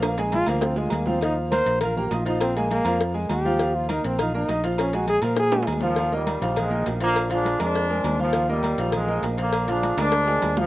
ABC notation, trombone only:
X:1
M:4/4
L:1/8
Q:1/4=202
K:Eb
V:1 name="Trombone"
B, z F B, C F B, C | E z c2 B G F E | C B, B,2 z2 G2- | G F E C E E2 z |
_D _G A B A2 z2 | z8 | z8 | z8 |
z8 |]